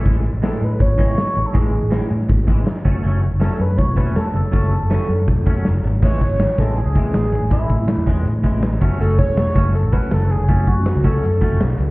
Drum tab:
CC |----------------|----------------|----------------|----------------|
HH |o---o---o---o---|o---o---o---o---|o---o---o---o---|o---o---o---o---|
SD |----o-------o---|----o--o---oo---|----o-------o---|----o------oo---|
BD |o-------o-o-----|o-------o-o---o-|--------o-o-----|o-------o-o-----|

CC |x---------------|----------------|----------------|----------------|
HH |--x-x-x-x-x-x-x-|x-x-x-x-x-x-x-x-|x-x-x-x-x-x-x-x-|x-x-x-x-x-x-x-x-|
SD |----o-------o---|----o-------o--o|----o-------o---|----o-------o---|
BD |o-o---o---o-----|o-o---o---o---o-|--o---o---o-----|o-o---o---o-----|